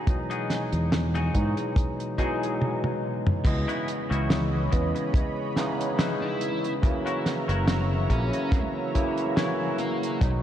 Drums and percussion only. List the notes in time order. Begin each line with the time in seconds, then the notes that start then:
0.07 kick, closed hi-hat
0.31 closed hi-hat
0.50 snare, closed hi-hat
0.72 closed hi-hat
0.92 snare, closed hi-hat
1.15 closed hi-hat
1.35 kick, closed hi-hat
1.57 closed hi-hat
1.76 kick, closed hi-hat
2.00 closed hi-hat
2.18 kick, closed hi-hat
2.43 closed hi-hat
2.62 high tom
2.84 high tom
3.27 mid tom
3.45 kick, closed hi-hat, crash
3.69 closed hi-hat
3.88 closed hi-hat
4.12 closed hi-hat
4.30 snare, closed hi-hat
4.72 kick, closed hi-hat
4.96 closed hi-hat
5.14 kick, closed hi-hat
5.56 snare, closed hi-hat
5.81 closed hi-hat
5.99 snare, closed hi-hat
6.41 closed hi-hat
6.64 closed hi-hat
6.83 kick, closed hi-hat
7.07 closed hi-hat
7.26 snare, closed hi-hat
7.49 closed hi-hat
7.68 snare, closed hi-hat
8.10 kick, closed hi-hat
8.33 closed hi-hat
8.52 kick, closed hi-hat
8.95 kick, closed hi-hat
9.17 closed hi-hat
9.37 snare, closed hi-hat
9.78 closed hi-hat
10.03 closed hi-hat
10.21 kick, closed hi-hat